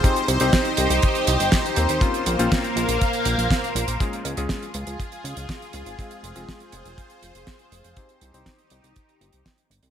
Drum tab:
HH |xxxxxxxxxxxxxxxx|xxxxxxxxxxxxxxxx|xxxxxxxxxxxxxxxx|xxxxxxxxxxxxxxxx|
SD |----o-------o---|----o-------o---|----o-------o---|----o-------o---|
BD |o---o---o---o---|o---o---o---o---|o---o---o---o---|o---o---o---o---|

HH |xxxxxxxxxxxxxxxx|
SD |----o-------o---|
BD |o---o---o---o---|